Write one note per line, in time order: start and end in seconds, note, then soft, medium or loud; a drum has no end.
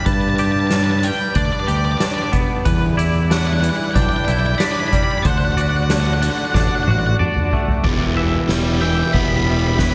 0.00 1.04 G3 medium
0.00 2.62 G3 medium
0.00 0.71 D4 medium
0.00 0.39 G4 medium
0.00 0.06 B4 medium
0.00 0.39 D5 medium
0.06 1.09 G2 medium
0.06 1.69 G2 medium
0.06 2.63 D4 medium
0.06 2.65 B4 medium
0.06 2.63 B4 medium
0.06 0.12 A5 medium
0.06 kick loud
0.06 closed hi-hat medium
0.13 0.21 A5 medium
0.21 0.29 A5 medium
0.29 0.36 A5 medium
0.36 1.67 G4 medium
0.36 1.35 D5 medium
0.36 0.44 A5 medium
0.36 closed hi-hat medium
0.45 0.52 A5 medium
0.52 0.60 A5 medium
0.60 0.67 A5 medium
0.67 1.36 D4 medium
0.67 0.75 A5 medium
0.67 snare medium
0.67 closed hi-hat medium
0.76 0.83 A5 medium
0.84 0.91 A5 medium
0.91 0.99 A5 medium
0.99 1.07 A5 medium
0.99 closed hi-hat medium
1.04 2.66 G3 medium
1.04 1.38 G5 medium
1.35 1.49 D2 loud
1.35 2.00 D4 medium
1.35 2.01 D5 medium
1.35 1.45 D5 medium
1.35 kick medium
1.35 closed hi-hat medium
1.46 1.52 D5 soft
1.53 1.59 D5 medium
1.60 1.67 D5 medium
1.67 1.94 D2 medium
1.67 2.66 G4 medium
1.67 1.75 D5 medium
1.67 closed hi-hat medium
1.77 1.84 D5 medium
1.85 1.92 D5 medium
1.92 1.98 D5 medium
1.98 2.68 D4 medium
1.98 2.06 D5 medium
1.98 2.65 D5 medium
1.98 snare loud
1.98 closed hi-hat medium
2.06 2.14 D5 soft
2.14 2.22 D5 medium
2.22 2.30 D5 soft
2.32 2.65 B3 medium
2.32 kick medium
2.32 closed hi-hat medium
2.65 4.28 E2 medium
2.65 3.69 E2 medium
2.65 5.23 G3 medium
2.65 5.23 E4 medium
2.65 2.97 B4 medium
2.65 7.81 D5 medium
2.65 kick loud
2.65 closed hi-hat medium
2.97 4.26 E4 medium
2.97 3.95 D5 medium
2.97 closed hi-hat medium
3.30 3.94 D4 medium
3.30 3.38 F#5 medium
3.30 snare medium
3.30 closed hi-hat medium
3.38 3.45 F#5 medium
3.47 3.53 F#5 medium
3.53 3.60 F#5 medium
3.61 5.25 E3 medium
3.61 3.68 F#5 medium
3.61 closed hi-hat medium
3.69 3.76 F#5 medium
3.77 3.84 F#5 medium
3.84 3.91 F#5 medium
3.91 3.94 F#5 medium
3.91 4.02 G5 medium
3.95 4.08 B1 loud
3.95 4.59 D4 medium
3.95 4.59 D5 medium
3.95 kick medium
3.95 closed hi-hat medium
4.02 4.09 G5 medium
4.09 4.16 G5 medium
4.16 4.24 G5 medium
4.25 4.54 B1 medium
4.25 5.25 E4 medium
4.25 4.31 G5 medium
4.25 closed hi-hat medium
4.32 4.39 G5 medium
4.39 4.46 G5 medium
4.46 4.54 G5 medium
4.55 4.62 G5 medium
4.55 4.64 B5 loud
4.60 5.25 D4 medium
4.60 5.25 D5 medium
4.60 snare loud
4.60 closed hi-hat medium
4.65 4.71 B5 medium
4.72 4.79 B5 loud
4.80 4.87 B5 medium
4.88 4.95 B5 medium
4.92 5.25 G3 medium
4.92 5.03 B5 medium
4.92 kick medium
4.92 closed hi-hat medium
5.03 5.11 B5 medium
5.11 5.18 B5 medium
5.18 5.26 B5 medium
5.22 6.28 D2 medium
5.22 6.21 D3 medium
5.22 7.81 A3 medium
5.22 7.82 F#4 medium
5.22 5.57 C5 medium
5.22 5.30 F#5 medium
5.22 kick loud
5.22 closed hi-hat medium
5.30 5.37 F#5 medium
5.38 5.45 F#5 medium
5.45 5.52 F#5 medium
5.52 5.60 F#5 medium
5.57 6.86 F#4 medium
5.57 6.22 D5 medium
5.57 closed hi-hat medium
5.61 5.69 F#5 medium
5.69 5.76 F#5 medium
5.76 5.83 F#5 medium
5.84 5.90 F#5 medium
5.90 6.54 D4 medium
5.90 5.99 F#5 medium
5.90 snare loud
5.90 closed hi-hat medium
6.00 6.06 F#5 medium
6.07 6.13 F#5 medium
6.13 6.21 F#5 medium
6.22 7.84 D3 medium
6.22 6.30 F#5 medium
6.22 closed hi-hat medium
6.30 6.38 F#5 medium
6.38 6.45 F#5 medium
6.45 6.51 F#5 medium
6.52 6.68 A1 loud
6.52 7.19 D4 medium
6.52 7.18 D5 medium
6.52 6.60 F#5 medium
6.52 kick medium
6.52 snare medium
6.60 6.68 F#5 medium
6.68 6.75 F#5 medium
6.75 6.83 F#5 medium
6.83 6.90 F#5 medium
6.87 7.13 A1 medium
6.87 7.85 F#4 medium
6.87 6.98 F#5 medium
6.87 high tom medium
6.99 7.06 F#5 medium
7.07 7.14 F#5 medium
7.19 7.85 D4 medium
7.19 7.83 D5 medium
7.19 mid tom medium
7.36 mid tom medium
7.52 7.85 A3 medium
7.52 floor tom medium
7.68 floor tom medium
7.84 8.36 E1 medium
7.84 8.48 E2 medium
7.84 9.47 E2 medium
7.84 8.47 B2 medium
7.84 8.49 E3 medium
7.84 9.95 B3 medium
7.84 9.95 G4 medium
7.84 8.16 D5 medium
7.84 9.95 E5 medium
7.84 kick loud
7.84 crash loud
8.17 8.81 E3 medium
8.17 8.82 E5 medium
8.17 ride medium
8.48 9.01 E1 medium
8.48 8.81 E2 medium
8.48 8.80 B2 medium
8.48 8.81 E3 medium
8.48 9.45 G3 medium
8.48 snare medium
8.48 ride medium
8.81 9.13 E2 medium
8.81 9.13 B2 medium
8.81 9.78 E3 medium
8.81 9.13 E3 medium
8.81 9.47 E5 medium
8.81 9.15 G5 medium
8.81 ride medium
9.13 9.95 E1 medium
9.13 9.77 E2 medium
9.13 9.78 B2 medium
9.13 9.78 E3 medium
9.13 9.95 B3 medium
9.13 9.20 B5 medium
9.13 kick medium
9.13 ride medium
9.21 9.28 B5 medium
9.28 9.36 B5 medium
9.36 9.43 B5 medium
9.43 9.95 G3 medium
9.43 9.50 B5 medium
9.43 ride medium
9.51 9.59 B5 medium
9.60 9.67 B5 medium
9.67 9.74 B5 medium
9.74 9.82 B5 medium
9.79 9.95 E2 medium
9.79 9.95 B2 medium
9.79 9.95 E3 medium
9.79 9.95 B4 medium
9.79 kick medium
9.79 snare loud
9.79 ride medium
9.83 9.90 B5 medium
9.90 9.95 B5 medium